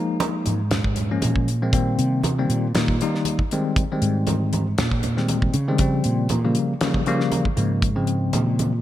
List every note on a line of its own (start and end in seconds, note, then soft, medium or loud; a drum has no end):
0.00 0.59 F3 medium
0.00 0.59 G#3 medium
0.00 0.59 A#3 medium
0.00 0.59 D#4 loud
0.20 closed hi-hat medium
0.20 high conga loud
0.46 1.19 G#2 medium
0.46 closed hi-hat medium
0.46 high conga medium
0.71 snare loud
0.71 closed hi-hat medium
0.71 muted conga soft
0.71 low conga medium
0.84 kick medium
0.96 closed hi-hat medium
0.96 muted conga soft
0.96 low conga medium
1.11 1.48 F3 medium
1.11 1.48 G#3 medium
1.11 1.48 A#3 medium
1.11 1.48 C#4 medium
1.22 1.96 A#2 medium
1.22 closed hi-hat medium
1.22 high conga medium
1.36 kick medium
1.48 closed hi-hat medium
1.62 1.71 F3 medium
1.62 1.71 G#3 medium
1.62 1.71 A#3 medium
1.62 1.71 C4 medium
1.73 2.20 D#3 medium
1.73 2.20 G3 medium
1.73 2.21 A#3 medium
1.73 2.21 C4 medium
1.73 kick loud
1.73 closed hi-hat medium
1.73 muted conga soft
1.99 2.46 C3 loud
1.99 closed hi-hat medium
2.23 closed hi-hat medium
2.23 high conga medium
2.39 2.66 D#3 medium
2.39 2.66 G3 medium
2.39 2.66 A#3 medium
2.39 2.66 C4 medium
2.49 2.74 A#2 medium
2.49 closed hi-hat medium
2.49 muted conga soft
2.75 3.00 A#2 medium
2.75 2.94 D#3 medium
2.75 2.95 G3 medium
2.75 2.95 A#3 medium
2.75 2.95 D#4 medium
2.75 snare loud
2.75 closed hi-hat medium
2.75 muted conga soft
2.75 high conga medium
2.88 kick medium
3.00 3.39 D#3 medium
3.00 3.40 G3 medium
3.00 3.40 A#3 medium
3.00 3.40 D#4 medium
3.00 closed hi-hat medium
3.00 muted conga soft
3.15 snare soft
3.25 closed hi-hat medium
3.25 high conga medium
3.39 kick medium
3.51 3.83 D#3 medium
3.51 3.83 G3 medium
3.51 3.83 G#3 medium
3.51 3.83 C4 medium
3.51 closed hi-hat medium
3.76 kick loud
3.76 closed hi-hat medium
3.76 muted conga soft
3.92 4.66 D#3 medium
3.92 4.66 G3 medium
3.92 4.66 G#3 medium
3.92 4.66 C4 medium
4.02 4.74 G#2 medium
4.02 closed hi-hat medium
4.27 closed hi-hat medium
4.27 high conga medium
4.53 closed hi-hat medium
4.53 muted conga soft
4.53 high conga medium
4.78 5.51 A#2 medium
4.78 snare loud
4.78 closed hi-hat medium
4.78 muted conga soft
4.78 low conga medium
4.91 kick medium
5.03 closed hi-hat medium
5.03 muted conga soft
5.03 low conga medium
5.17 5.54 D#3 medium
5.17 5.54 G3 medium
5.17 5.54 G#3 medium
5.17 5.54 C4 medium
5.17 snare soft
5.28 closed hi-hat medium
5.28 high conga medium
5.42 kick medium
5.54 6.01 C#3 loud
5.54 closed hi-hat medium
5.68 5.77 D#3 medium
5.68 5.77 G3 medium
5.68 5.77 G#3 medium
5.68 5.77 C4 medium
5.78 6.27 C#3 medium
5.78 6.27 F3 medium
5.78 6.27 G3 medium
5.78 6.27 C4 medium
5.78 kick loud
5.78 closed hi-hat loud
6.04 6.30 A#2 medium
6.04 closed hi-hat medium
6.29 6.56 A#2 medium
6.29 closed hi-hat medium
6.29 high conga medium
6.45 6.72 C#3 medium
6.45 6.73 F3 medium
6.45 6.73 G3 medium
6.45 6.73 A#3 medium
6.55 closed hi-hat medium
6.55 muted conga soft
6.81 7.01 C#3 medium
6.81 7.01 F3 medium
6.81 7.01 G3 medium
6.81 7.01 A#3 loud
6.81 snare loud
6.81 closed hi-hat medium
6.81 muted conga soft
6.81 high conga medium
6.94 kick medium
7.06 7.45 C#3 loud
7.06 7.46 F3 loud
7.06 7.45 G3 medium
7.06 7.46 A#3 loud
7.06 closed hi-hat medium
7.06 muted conga soft
7.20 snare soft
7.32 closed hi-hat medium
7.32 high conga medium
7.45 kick medium
7.57 8.30 G#2 medium
7.57 7.88 C#3 medium
7.57 7.88 F3 medium
7.57 7.88 G#3 medium
7.57 7.88 A#3 medium
7.57 closed hi-hat medium
7.82 kick loud
7.82 closed hi-hat medium
7.82 muted conga soft
7.96 8.71 C#3 medium
7.96 8.72 F3 medium
7.96 8.71 G#3 medium
7.96 8.72 C4 medium
8.07 closed hi-hat medium
8.33 8.82 A#2 medium
8.33 closed hi-hat medium
8.33 high conga medium
8.59 closed hi-hat medium
8.59 muted conga soft
8.59 high conga medium